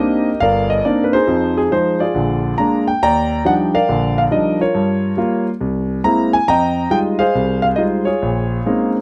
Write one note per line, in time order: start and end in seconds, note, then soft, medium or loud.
0.00 0.28 A#3 medium
0.00 0.29 C4 soft
0.00 0.29 D4 soft
0.00 0.29 D#4 medium
0.00 0.38 G4 medium
0.00 0.38 A#4 medium
0.00 0.37 D#5 medium
0.40 0.79 G1 medium
0.40 1.24 A#4 medium
0.40 0.83 D5 medium
0.40 0.68 F5 medium
0.70 0.83 D#5 medium
0.85 1.15 A#3 medium
0.85 1.15 C4 soft
0.85 1.15 D4 soft
0.85 1.13 D#4 medium
0.85 1.03 D5 medium
1.04 1.13 B4 medium
1.13 1.71 D#4 medium
1.13 1.56 G#4 medium
1.13 1.58 C5 medium
1.28 1.65 F2 medium
1.28 1.65 F3 medium
1.57 1.72 G#4 medium
1.71 2.01 F3 medium
1.71 2.02 G#3 soft
1.71 2.02 D#4 medium
1.71 1.98 C5 medium
2.00 2.83 F4 medium
2.00 2.83 G#4 soft
2.00 2.83 D5 medium
2.14 2.52 A#1 medium
2.14 2.52 D3 medium
2.58 2.89 G#3 soft
2.58 2.89 A#3 soft
2.58 2.89 D4 medium
2.58 2.85 A#5 medium
2.88 3.02 G5 medium
3.03 3.39 D#2 medium
3.03 3.73 D5 medium
3.03 3.85 G5 medium
3.03 3.42 A#5 loud
3.45 3.75 F3 medium
3.45 3.75 G3 soft
3.45 3.75 D4 soft
3.45 3.75 D#4 medium
3.45 3.53 F#5 medium
3.74 4.56 A#4 medium
3.74 4.57 D5 medium
3.74 4.17 F5 medium
3.89 4.26 A#1 medium
3.89 4.26 D3 medium
4.18 4.23 F5 medium
4.31 4.61 F3 soft
4.31 4.62 G3 soft
4.31 4.62 D4 soft
4.31 4.62 D#4 medium
4.31 4.58 D#5 medium
4.61 5.17 F4 medium
4.61 5.43 A#4 medium
4.61 5.43 C#5 medium
4.75 5.12 G2 medium
5.17 5.48 G3 medium
5.17 5.48 A#3 medium
5.17 5.48 F4 medium
5.61 5.98 C2 medium
6.04 6.35 G#3 medium
6.04 6.35 A#3 soft
6.04 6.35 C4 soft
6.04 6.35 E4 medium
6.04 6.34 A#5 medium
6.33 6.48 G#5 medium
6.48 6.86 F2 medium
6.48 7.31 D#5 medium
6.48 6.90 G5 medium
6.48 6.88 A#5 loud
6.90 7.21 G3 medium
6.90 7.21 G#3 soft
6.90 7.22 D#4 medium
6.90 7.21 F4 medium
6.90 6.98 G5 medium
7.19 8.03 G#4 medium
7.19 8.03 C5 medium
7.19 7.60 F5 medium
7.35 7.72 C2 medium
7.62 7.67 F5 medium
7.76 8.08 G3 medium
7.76 8.08 G#3 soft
7.76 8.08 D#4 soft
7.76 8.05 F4 medium
7.76 7.83 D#5 medium
8.05 8.89 F4 medium
8.05 8.90 G#4 medium
8.05 8.89 C#5 medium
8.22 8.59 A#1 medium
8.66 8.96 G#3 medium
8.66 8.96 A#3 medium
8.66 8.96 C4 soft
8.66 8.96 C#4 medium
8.66 8.96 D#4 medium